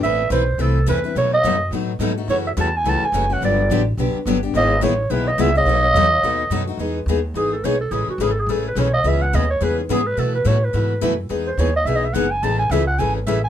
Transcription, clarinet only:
X:1
M:4/4
L:1/8
Q:"Swing" 1/4=213
K:E
V:1 name="Clarinet"
e2 =c2 A2 B2 | c d3 z4 | c e a g a g2 f | =d3 z4 z |
d2 c2 B d e d- | d6- d z | z4 G A c A | G F (3G A G A B c d |
e f d c B D G B | A B c B3 z2 | z =c ^c d (3e d e f g | a g e f g B e g |]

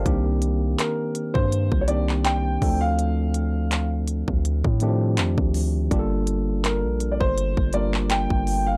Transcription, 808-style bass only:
X:1
M:4/4
L:1/16
Q:"Swing 16ths" 1/4=82
K:Gm
V:1 name="808-style bass" clef=bass
C,,4 z3 G,,2 C,,4- C,, D,,2- | D,,6- D,, D,,2 A,,3 F,, D,,3 | G,,,4- G,,, B,,,2 G,,,2 G,,,4 G,,,3 |]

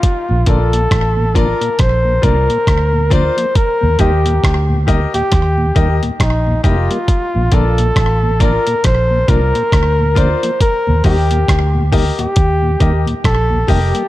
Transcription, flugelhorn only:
X:1
M:4/4
L:1/16
Q:"Swing 16ths" 1/4=68
K:Bb
V:1 name="Flugelhorn"
F2 A4 B2 c2 B4 c2 | B2 G4 z G4 z E2 F2- | F2 A4 B2 c2 B4 c2 | B2 G4 z G4 z A2 G2 |]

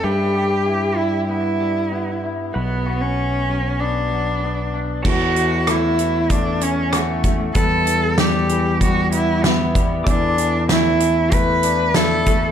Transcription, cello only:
X:1
M:4/4
L:1/16
Q:1/4=96
K:Edor
V:1 name="Cello"
G6 E2 E6 z2 | B,3 C4- C D6 z2 | F4 E4 D2 C2 A,3 z | A4 G4 F2 E2 B,3 z |
D4 E4 B4 A3 z |]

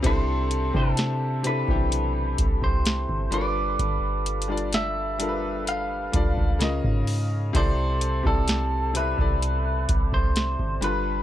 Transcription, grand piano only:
X:1
M:4/4
L:1/16
Q:1/4=64
K:C
V:1 name="Grand piano"
[C,CDEA]3 [C,CDEG]3 [C,CDEA] [E,CDEG]6- [E,CDEG] [G,DFA_B=B]2- | [G,DFA_B=B]2 z [G,DFAd]3 [G,DFA_B=B]4 [G,DFAd]2 [_D,_DF_B_e]4 | [C,CEAd]3 [C,CEAd]3 [C,CEAe] [C,CEAd]6- [C,CEAd] [G,DFAB]2 |]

